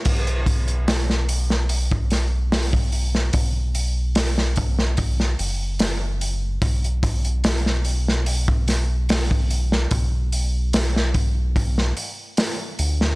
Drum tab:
CC |x---------------|----------------|----------------|----------------|
HH |oxoxo-o-o-o-o-o-|o-o-o-o-o-o-o-o-|oxoxo-o-o-o-o-o-|o-o-o-o-o-o-o-o-|
SD |----oo-o--o-o--o|----oo-o-o--o---|----oo-o--o-o--o|----oo---o--o--o|
BD |o-o------o---o--|o-----o-o-------|o-o------o---o--|o-----o-o-------|